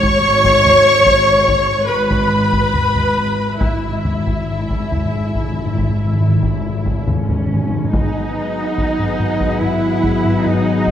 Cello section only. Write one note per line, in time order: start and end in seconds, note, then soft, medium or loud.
0.00 0.14 G#2 medium
0.23 0.96 G#2 medium
1.05 1.79 G#2 medium
1.89 2.64 G#2 medium
2.74 3.50 G#2 medium
3.60 4.38 G#2 soft
4.48 5.24 G#2 soft
5.34 6.11 G#2 soft
6.21 6.97 G#2 soft
7.08 7.83 G#2 soft
7.08 7.89 C#4 soft
7.93 9.58 D#4 medium
9.61 10.45 E4 medium
10.45 10.91 D#4 medium